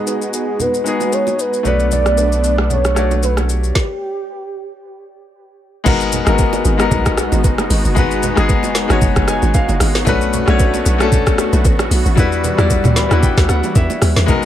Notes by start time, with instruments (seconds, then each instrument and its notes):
Already playing: grand piano G#3 B3 D#4 F#4 G#4 B4, analog synth pad G#3 B3 D#4 F#4, soft synth lead G#4
0.07 high bongo, shaker
0.22 shaker
0.33 soft synth lead G#4, shaker
0.60 soft synth lead B4, low conga, shaker
0.74 shaker
0.84 grand piano G#3 B3 D#4 F#4 G#4, high bongo, shaker
1.01 low bongo, shaker
1.12 soft synth lead C#5, high bongo, shaker
1.27 low bongo, shaker
1.39 soft synth lead B4, shaker
1.53 shaker
1.63 sub bass B1, grand piano A3 B3 D4 F#4 B4, analog synth pad A3 B3 D4, soft synth lead D5, low conga, shaker
1.79 shaker
1.91 soft synth lead D5, low conga, shaker
2.06 cross-stick, shaker
2.18 high bongo, shaker
2.32 shaker
2.44 shaker
2.58 cross-stick
2.70 soft synth lead C#5, low conga, shaker
2.85 cross-stick, shaker
2.95 grand piano A3 D4 F#4 C#5 D5, cross-stick, high bongo, shaker
3.11 low bongo, shaker
3.23 soft synth lead B4, high bongo, shaker
3.37 cross-stick, low bongo, shaker
3.49 soft synth lead G4, shaker
3.64 shaker
3.75 kick, snare
5.84 log drum bass G#1, grand piano G#3 B3 D#4 F#4 A#4, analog synth pad G#3 B3 D#4 F#4, kick, crash, low conga, shaker
6.00 shaker
6.12 high bongo, low conga, shaker
6.25 log drum bass G#1, grand piano G#3 A#3 D#4 F#4, cross-stick, shaker
6.29 grand piano B3 A#4
6.38 kick, high bongo, shaker
6.53 low bongo, shaker
6.65 log drum bass G#1, shaker
6.77 grand piano G#3 B3 D#4 F#4, cross-stick, shaker
6.82 grand piano A#4
6.91 log drum bass B1, kick, low conga, shaker
7.06 kick, cross-stick, shaker
7.17 cross-stick, high bongo, shaker
7.32 log drum bass G#1, low bongo, shaker
7.44 log drum bass F#1, kick, high bongo, shaker
7.58 cross-stick, low bongo, shaker
7.70 log drum bass G#1, open hi-hat, shaker
7.85 log drum bass F#1, shaker
7.95 log drum bass G#1, grand piano G#3 B3 D#4 F#4, kick, low conga, shaker
7.99 grand piano B4
8.11 shaker
8.23 high bongo, low conga, shaker
8.35 log drum bass G#1, grand piano G#3 B3 D#4 F#4 G#4, cross-stick, shaker
8.49 kick, high bongo, shaker
8.63 log drum bass F#1, low bongo, shaker
8.75 snare, shaker
8.88 log drum bass G#1, grand piano G#3 B3 D#4 F#4, cross-stick, shaker
8.92 grand piano C#5
9.01 log drum bass F#1, kick, low conga, shaker
9.16 log drum bass F#1, kick, cross-stick, shaker
9.28 grand piano G#5, cross-stick, high bongo, shaker
9.42 log drum bass G#1, low bongo, shaker
9.54 grand piano F5, kick, high bongo, shaker
9.69 log drum bass F#1, low bongo, shaker
9.80 log drum bass G#1, cross-stick, open hi-hat, shaker
9.95 snare, shaker
10.05 log drum bass B1, grand piano A3 C#4 D4 F#4 B4, analog synth pad A3 B3 F#4, kick, low conga, shaker
10.21 shaker
10.33 high bongo, low conga, shaker
10.46 log drum bass B1, grand piano A3 C#4 D4 F#4 C#5, cross-stick, shaker
10.59 kick, high bongo, shaker
10.74 low bongo, shaker
10.86 log drum bass B1, shaker
10.98 grand piano A3 C#4 D4 F#4 A4, cross-stick, shaker
11.12 log drum bass C#2, kick, low conga, shaker
11.27 kick, cross-stick, shaker
11.38 cross-stick, high bongo, shaker
11.53 log drum bass B1, low bongo, shaker
11.65 log drum bass A1, kick, high bongo, shaker
11.79 cross-stick, low bongo, shaker
11.91 log drum bass B1, open hi-hat, shaker
12.05 log drum bass A1, shaker
12.15 log drum bass E2, analog synth pad E3 G3, grand piano G3 D4 E4 F#4, kick, low conga, shaker
12.19 grand piano B4
12.32 shaker
12.44 high bongo, low conga, shaker
12.56 log drum bass E2, grand piano F#3 D4 E4 F#4 D5, cross-stick, shaker
12.62 grand piano G3
12.70 kick, high bongo, shaker
12.84 log drum bass D2, mid tom, low bongo, shaker
12.96 grand piano B5, snare, shaker
13.09 log drum bass D#2, grand piano G3 D4 E4 F#4 B4, cross-stick, shaker
13.22 grand piano G5, kick, low conga, shaker
13.37 log drum bass D2, kick, cross-stick, snare, shaker
13.49 log drum bass D2, grand piano F#5, cross-stick, high bongo, shaker
13.63 low bongo, shaker
13.75 log drum bass E2, grand piano E5, kick, high bongo, shaker
13.90 low bongo, shaker
14.02 log drum bass D#2, cross-stick, open hi-hat, low bongo, shaker
14.16 log drum bass E2, snare, shaker
14.26 log drum bass G#1, grand piano G#3 B3 D#4 F#4, analog synth pad G#3 B3 D#4 F#4, kick, low conga, shaker
14.30 grand piano A#4